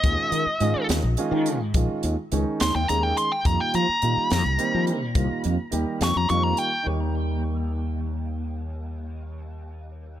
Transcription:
<<
  \new Staff \with { instrumentName = "Lead electric guitar" } { \time 6/8 \key ees \mixolydian \tempo 4. = 70 ees''4. r4. | r4. c'''16 g''16 bes''16 g''16 c'''16 g''16 | bes''16 g''16 bes''2 r8 | r4. des'''16 bes''16 des'''16 bes''16 g''8 |
r2. | r2. | }
  \new Staff \with { instrumentName = "Grand piano" } { \time 6/8 \key ees \mixolydian <ees aes des' f'>8 r8 <ees aes des' f'>8 r8 <ees aes des' f'>8 r8 | <ees aes des' f'>8 r8 <ees aes des' ees'>8 r8 <ees aes des' aes'>8 r8 | <ees g bes f'>8 r8 <ees g bes f'>8 r8 <ees g bes c'>8 r8 | <ees g bes f'>8 r8 <ees g bes g'>8 r8 <ees g bes f'>8 r8 |
<ees g bes g'>2.~ | <ees g bes g'>2. | }
  \new Staff \with { instrumentName = "Fretless electric bass" } { \clef bass \time 6/8 \key ees \mixolydian ees,16 r16 ees16 r16 aes,16 r16 ees,16 bes,,16 r16 ees8 aes,16 | bes,,16 r16 ees,16 r16 des,16 r16 ees,16 ees,16 ees,8 r8 | f,16 r16 f16 r16 bes,16 r16 f,16 c,16 r16 f8 bes,16 | c,16 r16 f,16 r16 ees,16 r16 f,16 f,16 f,8 r8 |
ees,2.~ | ees,2. | }
  \new DrumStaff \with { instrumentName = "Drums" } \drummode { \time 6/8 <hh bd>8 hh8 hh8 <hh sn>8 hh8 hh8 | <hh bd>8 hh8 hh8 <hh sn>8 hh8 hh8 | <hh bd>8 hh8 hh8 <hh sn>8 hh8 hh8 | <hh bd>8 hh8 hh8 <hh sn>8 hh8 hh8 |
r4. r4. | r4. r4. | }
>>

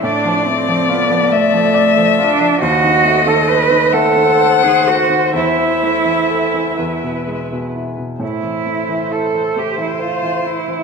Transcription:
<<
  \new Staff \with { instrumentName = "Violin" } { \time 6/8 \key a \minor \tempo 4. = 45 d''4. e''4. | dis''4. fis''4. | e''2~ e''16 r8. | r4. c''4. | }
  \new Staff \with { instrumentName = "Violin" } { \time 6/8 \key a \minor d''2. | bis'2.~ | bis'4. b'4. | c''2. | }
  \new Staff \with { instrumentName = "Cello" } { \time 6/8 \key a \minor d'8 c'8 b8 a4 d'8 | fis'8. a'16 b'8 a'8. gis'16 fis'8 | e'2~ e'8 r8 | e'4 a'8 g'16 e'16 f'8 e'8 | }
  \new Staff \with { instrumentName = "Grand piano" } { \clef bass \time 6/8 \key a \minor a,16 f16 a16 f16 f'16 f16 a16 f16 d''16 f16 f'16 f16 | dis,16 dis16 a16 dis16 a'16 dis16 a16 dis16 bis'16 dis16 a'16 dis16 | e,16 e16 a16 e16 a'16 e16 e,16 b,16 gis16 b,16 e'16 b,16 | a,16 e16 a16 e16 e'16 e16 a16 e16 c''16 e16 e'16 e16 | }
>>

